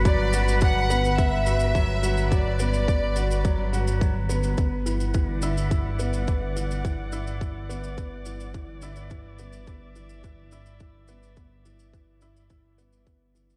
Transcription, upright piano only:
\new Staff \with { instrumentName = "Upright piano" } { \time 4/4 \key g \major \tempo 4 = 106 fis8 fis'8 fis8 b8 b8 fis'8 fis8 fis'8 | fis8 b8 b8 fis'8 fis8 fis'8 fis8 b8 | b8 e8 e8 e'8 e8 b8 b8 e8 | e8 e'8 e8 b8 b8 e8 e8 e'8 |
e8 b8 b8 e8 e8 e'8 e8 b8 | b8 e8 e8 e'8 e8 b8 b8 e8 | }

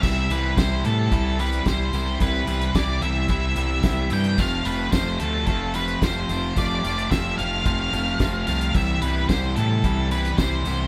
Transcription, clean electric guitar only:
\new Staff \with { instrumentName = "Clean electric guitar" } { \clef bass \time 4/4 \key c \major \tempo 4 = 110 <c e g b e'>8 <c e g b e'>8 <c e g b e'>8 <c e g b e'>8 <c e g b e'>8 <c e g b e'>8 <c e g b e'>8 <c e g b e'>8 | <c e g b e'>8 <c e g b e'>8 <c e g b e'>8 <c e g b e'>8 <c e g b e'>8 <c e g b e'>8 <c e g b e'>8 <c e g b e'>8 | <f, c f a c' f'>8 <f, c f a c' f'>8 <f, c f a c' f'>8 <f, c f a c' f'>8 <f, c f a c' f'>8 <f, c f a c' f'>8 <f, c f a c' f'>8 <f, c f a c' f'>8 | <f, c f a c' f'>8 <f, c f a c' f'>8 <f, c f a c' f'>8 <f, c f a c' f'>8 <f, c f a c' f'>8 <f, c f a c' f'>8 <f, c f a c' f'>8 <f, c f a c' f'>8 |
<c e g b e'>8 <c e g b e'>8 <c e g b e'>8 <c e g b e'>8 <c e g b e'>8 <c e g b e'>8 <c e g b e'>8 <c e g b e'>8 | }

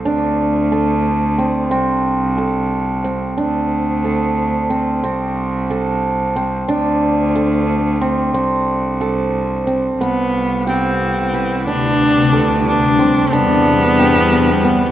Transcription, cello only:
\new Staff \with { instrumentName = "Cello" } { \clef bass \time 5/8 \key a \minor \tempo 4 = 91 d,2~ d,8 | c,2~ c,8 | d,2~ d,8 | c,2~ c,8 |
d,2~ d,8 | c,2~ c,8 | c,2~ c,8 | d,2~ d,8 |
e,2~ e,8 | }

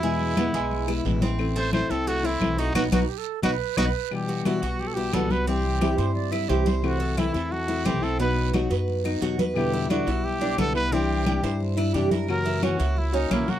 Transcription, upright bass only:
\new Staff \with { instrumentName = "Upright bass" } { \clef bass \time 4/4 \key e \minor \tempo 4 = 176 e,4. b,,4. a,,4~ | a,,4. c,4. b,,4 | b,,8 b,,8 r4 b,,8 r8 b,,8 r8 | r4. b,,4. c,4~ |
c,4. g,4. c,4~ | c,4. e,4. b,,4~ | b,,4. fis,4. e,4~ | e,4. b,,4. c,4~ |
c,4. g,4. r4 | r4. cis,4. b,,4 | }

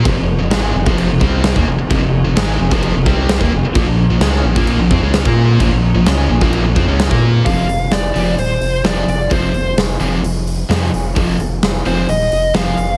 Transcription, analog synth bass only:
\new Staff \with { instrumentName = "Analog synth bass" } { \clef bass \time 4/4 \key bes \major \tempo 4 = 130 f,,16 f,,8 f,,16 aes,,8 f,,16 f,,8 f,,16 c,8. ees,16 f,,16 f,,16 | f,,16 f,,8 f,,16 aes,,8 f,,16 f,,8 f,,16 c,8. ees,16 f,,16 f,,16 | bes,,16 bes,,8 bes,,16 des,8 bes,,16 bes,,8 bes,,16 f,16 des,8 bes,8. | bes,,16 bes,,8 bes,,16 des,8 bes,,16 bes,,8 bes,,16 f,16 des,8 bes,8. |
f,,8 f,,8 f,,8 f,,8 ees,,8 f,,8 f,,8 f,,8 | f,,8 f,,8 f,,8 f,,8 f,,4 f,8 f,,8 | f,,8 f,,8 f,,8 f,,8 ees,,8 f,,8 f,,8 f,,8 | }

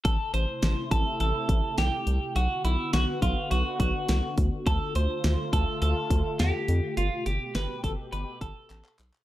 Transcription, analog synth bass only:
\new Staff \with { instrumentName = "Analog synth bass" } { \clef bass \time 4/4 \key a \minor \tempo 4 = 104 a,,16 r16 a,,16 r16 a,,16 r16 a,,16 r16 a,,16 r16 a,,16 r16 b,,16 r16 c,16 r16 | b,,16 r16 b,,16 r16 b,,16 r16 b,,16 r16 b,,16 r16 b,,16 r16 c,16 r16 d,16 r16 | d,16 r16 d,16 r16 d,16 r16 d,16 r16 d,16 r16 d,16 r16 e,16 r16 f,16 r16 | g,,16 r16 g,,16 r16 g,,16 r16 g,,16 r16 g,,16 r16 g,,16 r16 a,,16 r16 b,,16 r16 | }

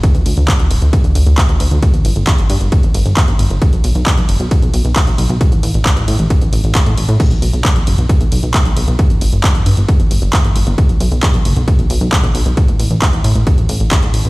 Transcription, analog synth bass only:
\new Staff \with { instrumentName = "Analog synth bass" } { \clef bass \time 4/4 \key b \minor \tempo 4 = 134 r16 d,16 d,16 d,16 r16 d,16 d,,16 d,16 r16 d,16 d,16 d,16 r16 d,16 d,16 d,16 | r16 g,,16 g,,16 g,,16 r16 g,,16 g,16 g,,16 r16 g,,16 g,,16 g,,16 r16 g,,16 g,,16 g,,16 | r16 b,,16 b,,16 b,,16 r16 b,,16 fis,,16 b,,16 r16 b,,16 b,,16 b,,16 r16 b,,16 b,,16 b,,16 | r16 a,,16 a,,16 a,,16 r16 a,,16 a,16 a,,16 r16 a,,16 a,,16 a,,16 r16 a,16 a,,16 a,16 |
r16 b,,16 b,,16 b,,16 r16 b,,16 fis,,16 b,,16 r16 b,,16 b,,16 b,,16 r16 b,,16 b,,16 b,,16 | r16 g,,16 g,,16 g,,16 r16 g,,16 g,16 g,,16 r16 g,,16 g,,16 g,,16 r16 g,,16 g,,16 g,,16 | r16 b,,16 b,,16 b,,16 r16 b,,16 fis,,16 b,,16 r16 b,,16 b,,16 b,,16 r16 b,,16 b,,16 b,,16 | r16 a,,16 a,,16 a,,16 r16 a,,16 a,16 a,,16 r16 a,,16 a,,16 a,,16 r16 a,,16 a,,16 a,,16 | }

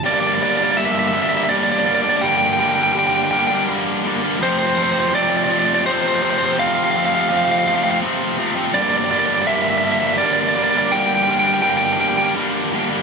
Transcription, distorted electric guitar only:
\new Staff \with { instrumentName = "Distorted electric guitar" } { \time 3/4 \key g \dorian \tempo 4 = 83 <g, d g bes d'>8 <d g bes d'>16 <g bes d'>16 <g, d g bes d'>8 <d g bes d'>16 <g bes d'>16 <d g bes d'>8 <d g bes d'>16 <g bes d'>16 | <g, d g bes d'>8 <d g bes d'>16 <g bes d'>16 <g, d g bes d'>8 <d g bes d'>16 <g bes d'>16 <d g bes d'>8 <d g bes d'>16 <g bes d'>16 | <f, c f a c'>8 <c f a c'>16 <f a c'>16 <f, c f a c'>8 <c f a c'>16 <f a c'>16 <c f a c'>8 <c f a c'>16 <f a c'>16 | <f, c f a c'>8 <c f a c'>16 <f a c'>16 <f, c f a c'>8 <c f a c'>16 <f a c'>16 <c f a c'>8 <c f a c'>16 <f a c'>16 |
<g, d g bes d'>8 <d g bes d'>16 <g bes d'>16 <g, d g bes d'>8 <d g bes d'>16 <g bes d'>16 <d g bes d'>8 <d g bes d'>16 <g bes d'>16 | <g, d g bes d'>8 <d g bes d'>16 <g bes d'>16 <g, d g bes d'>8 <d g bes d'>16 <g bes d'>16 <d g bes d'>8 <d g bes d'>16 <g bes d'>16 | }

